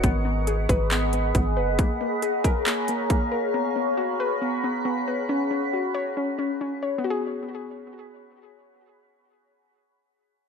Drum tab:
HH |x-xxxxx-|x-xxxxx-|--------|--------|
CP |----x---|----x---|--------|--------|
BD |o--o--o-|o--o--o-|--------|--------|

HH |--------|--------|
CP |--------|--------|
BD |--------|--------|